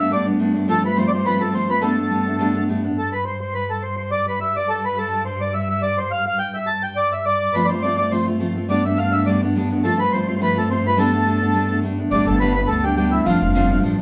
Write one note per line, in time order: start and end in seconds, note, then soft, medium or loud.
0.00 2.95 G2 medium
0.00 0.10 B3 soft
0.00 0.10 D4 soft
0.00 0.12 E5 medium
0.11 0.26 G3 medium
0.11 0.27 A3 medium
0.11 0.26 B3 medium
0.11 0.24 D4 medium
0.11 0.27 D5 medium
0.25 0.38 A3 soft
0.25 0.39 B3 medium
0.25 0.39 D4 medium
0.39 0.55 G3 medium
0.39 0.55 A3 medium
0.39 0.54 B3 medium
0.39 0.53 D4 medium
0.54 0.67 A3 soft
0.54 0.68 B3 soft
0.54 0.67 D4 medium
0.68 0.83 F3 medium
0.68 0.84 A3 medium
0.68 0.84 C4 medium
0.68 0.82 F4 medium
0.68 0.83 A4 loud
0.84 0.95 A3 soft
0.84 0.96 C4 soft
0.84 0.96 F4 soft
0.84 0.98 B4 medium
0.96 1.12 F3 medium
0.96 1.12 A3 medium
0.96 1.11 C4 medium
0.96 1.10 F4 medium
0.96 1.09 C5 medium
1.08 1.25 F4 soft
1.08 1.12 D5 medium
1.13 1.24 A3 soft
1.13 1.25 C4 soft
1.13 1.25 C5 medium
1.25 1.41 F3 medium
1.25 1.41 A3 medium
1.25 1.40 C4 medium
1.25 1.39 F4 medium
1.25 1.42 B4 medium
1.40 1.52 A3 soft
1.40 1.53 C4 medium
1.40 1.53 F4 soft
1.40 1.54 A4 medium
1.52 1.68 F3 medium
1.52 1.69 A3 medium
1.52 1.69 C4 medium
1.52 1.68 F4 medium
1.52 1.70 C5 medium
1.69 1.80 A3 soft
1.69 1.82 C4 soft
1.69 1.82 F4 soft
1.69 1.83 B4 medium
1.81 1.97 G3 medium
1.81 1.97 A3 medium
1.81 1.96 B3 loud
1.81 1.95 D4 medium
1.81 2.64 A4 medium
1.97 2.10 A3 soft
1.97 2.10 B3 soft
1.97 2.10 D4 soft
2.10 2.26 G3 medium
2.10 2.26 A3 medium
2.10 2.25 B3 medium
2.10 2.24 D4 medium
2.26 2.38 A3 soft
2.26 2.38 B3 soft
2.26 2.39 D4 soft
2.39 2.55 G3 medium
2.39 2.55 A3 medium
2.39 2.55 B3 medium
2.39 2.53 D4 medium
2.54 2.68 A3 soft
2.54 2.68 B3 medium
2.54 2.67 D4 medium
2.68 2.84 G3 medium
2.68 2.84 A3 medium
2.68 2.84 B3 medium
2.68 2.83 D4 medium
2.84 2.98 A3 soft
2.84 2.97 B3 soft
2.84 2.96 D4 medium
2.96 7.54 G2 medium
2.96 3.14 A4 medium
3.13 3.24 B4 medium
3.25 3.40 C5 medium
3.41 3.54 C5 medium
3.54 3.70 B4 medium
3.70 3.83 A4 medium
3.82 3.96 C5 medium
3.97 4.11 C5 medium
4.12 4.26 D5 medium
4.28 4.39 B4 medium
4.41 4.56 E5 medium
4.56 4.69 D5 medium
4.69 4.85 A4 medium
4.85 4.98 B4 medium
4.98 5.24 A4 medium
5.26 5.42 C5 medium
5.41 5.54 D5 medium
5.54 5.68 E5 medium
5.70 5.82 E5 medium
5.82 5.99 D5 medium
5.98 6.12 C5 medium
6.12 6.25 F5 medium
6.26 6.39 F5 medium
6.39 6.56 G5 medium
6.55 6.68 E5 medium
6.67 6.82 A5 medium
6.83 6.97 G5 medium
6.96 7.13 D5 medium
7.13 7.25 E5 medium
7.26 7.55 D5 medium
7.54 12.11 G2 medium
7.54 7.71 F3 medium
7.54 7.71 A3 medium
7.54 7.70 C4 medium
7.54 7.69 F4 medium
7.54 7.66 B4 medium
7.65 7.83 C5 medium
7.65 7.70 D5 soft
7.70 7.83 A3 soft
7.70 7.84 C4 soft
7.70 7.83 F4 medium
7.82 7.99 F3 medium
7.82 8.00 A3 medium
7.82 7.99 C4 medium
7.82 7.98 F4 medium
7.82 7.96 D5 medium
7.98 8.11 A3 soft
7.98 8.12 C4 soft
7.98 8.12 F4 soft
7.98 8.12 D5 medium
8.11 8.27 F3 medium
8.11 8.28 A3 medium
8.11 8.27 C4 medium
8.11 8.27 F4 medium
8.11 8.26 C5 medium
8.28 8.39 A3 soft
8.28 8.39 C4 soft
8.28 8.41 F4 medium
8.39 8.56 F3 medium
8.39 8.56 A3 medium
8.39 8.55 C4 medium
8.39 8.54 F4 medium
8.55 8.68 A3 medium
8.55 8.69 C4 soft
8.55 8.69 F4 medium
8.68 8.84 G3 medium
8.68 8.85 A3 medium
8.68 8.85 B3 medium
8.68 8.83 D4 medium
8.68 8.84 D5 medium
8.84 8.97 A3 soft
8.84 8.97 B3 soft
8.84 8.97 D4 soft
8.84 8.98 E5 medium
8.97 9.13 G3 medium
8.97 9.14 A3 medium
8.97 9.13 B3 medium
8.97 9.12 D4 medium
8.97 9.14 F5 medium
9.12 9.26 A3 soft
9.12 9.27 B3 soft
9.12 9.26 D4 medium
9.12 9.26 E5 medium
9.26 9.42 G3 medium
9.26 9.43 A3 medium
9.26 9.42 B3 medium
9.26 9.41 D4 medium
9.26 9.41 D5 medium
9.42 9.55 A3 soft
9.42 9.56 B3 medium
9.42 9.55 D4 medium
9.55 9.71 G3 medium
9.55 9.71 A3 medium
9.55 9.71 B3 medium
9.55 9.70 D4 medium
9.71 9.83 A3 soft
9.71 9.84 B3 medium
9.71 9.84 D4 medium
9.83 9.99 F3 medium
9.83 10.00 A3 medium
9.83 10.00 C4 medium
9.83 9.98 F4 medium
9.83 10.00 A4 medium
9.99 10.12 A3 soft
9.99 10.13 C4 soft
9.99 10.12 F4 medium
9.99 10.12 B4 medium
10.12 10.28 F3 medium
10.12 10.28 A3 medium
10.12 10.28 C4 medium
10.12 10.27 F4 medium
10.12 10.27 C5 medium
10.28 10.40 A3 soft
10.28 10.40 C4 soft
10.28 10.41 F4 medium
10.28 10.36 C5 medium
10.37 10.56 F3 medium
10.37 10.56 A3 medium
10.37 10.41 C5 medium
10.41 10.56 C4 medium
10.41 10.54 F4 medium
10.41 10.58 B4 medium
10.56 10.69 A3 soft
10.56 10.70 C4 medium
10.56 10.69 F4 soft
10.56 10.69 A4 medium
10.69 10.85 F3 medium
10.69 10.85 A3 medium
10.69 10.84 C4 medium
10.69 10.83 F4 medium
10.69 10.86 C5 medium
10.84 10.96 A3 soft
10.84 10.98 C4 soft
10.84 10.97 F4 soft
10.84 10.99 B4 medium
10.97 11.13 G3 medium
10.97 11.13 A3 medium
10.97 11.12 B3 medium
10.97 11.11 D4 medium
10.97 11.80 A4 medium
11.12 11.25 A3 soft
11.12 11.26 B3 soft
11.12 11.26 D4 medium
11.25 11.42 G3 medium
11.25 11.42 A3 medium
11.25 11.41 B3 medium
11.25 11.40 D4 medium
11.41 11.53 A3 soft
11.41 11.54 B3 soft
11.41 11.54 D4 medium
11.54 11.70 G3 medium
11.54 11.70 A3 medium
11.54 11.69 B3 medium
11.54 11.68 D4 medium
11.69 11.82 A3 medium
11.69 11.83 B3 medium
11.69 11.83 D4 medium
11.83 11.99 G3 medium
11.83 11.99 A3 medium
11.83 11.99 B3 medium
11.83 11.97 D4 medium
11.98 12.12 A3 soft
11.98 12.12 B3 soft
11.98 12.12 D4 medium
12.11 12.25 G1 medium
12.11 14.02 G2 medium
12.11 12.28 G3 medium
12.11 12.28 A3 medium
12.11 12.27 B3 medium
12.11 12.26 D4 medium
12.11 12.26 D5 medium
12.26 12.62 G1 medium
12.26 12.39 A3 soft
12.26 12.40 B3 soft
12.26 12.40 D4 soft
12.26 12.39 A4 medium
12.40 12.56 G3 medium
12.40 12.56 A3 medium
12.40 12.55 B3 medium
12.40 12.54 D4 medium
12.40 12.53 B4 medium
12.55 12.68 A3 soft
12.55 12.69 B3 soft
12.55 12.68 D4 soft
12.55 12.69 B4 medium
12.68 13.17 D2 medium
12.68 12.84 G3 medium
12.68 12.85 A3 soft
12.68 12.84 B3 medium
12.68 12.83 D4 medium
12.68 12.84 A4 medium
12.84 12.96 A3 soft
12.84 12.97 B3 soft
12.84 12.97 D4 medium
12.84 12.95 G4 medium
12.97 13.13 G3 medium
12.97 13.13 A3 medium
12.97 13.13 B3 medium
12.97 13.12 D4 medium
12.97 13.13 G4 medium
13.12 13.27 B3 soft
13.12 13.26 D4 medium
13.12 13.26 E4 medium
13.16 13.26 A3 soft
13.26 13.39 F1 medium
13.26 13.42 F2 medium
13.26 13.42 D3 medium
13.26 13.42 F3 medium
13.26 13.42 A3 medium
13.26 13.42 C4 medium
13.26 13.40 D4 medium
13.26 13.79 F4 medium
13.41 13.77 F1 medium
13.41 13.54 F3 soft
13.41 13.54 A3 medium
13.41 13.54 C4 soft
13.41 13.54 D4 medium
13.54 13.70 F2 medium
13.54 13.70 D3 medium
13.54 13.71 F3 medium
13.54 13.70 A3 medium
13.54 13.71 C4 medium
13.54 13.69 D4 medium
13.71 13.82 F3 soft
13.71 13.84 A3 medium
13.71 13.83 C4 soft
13.71 13.83 D4 medium
13.83 14.02 A1 medium
13.83 13.99 F3 medium
13.83 13.98 A3 medium
13.83 13.99 C4 medium
13.83 13.97 D4 medium
13.98 14.02 D4 medium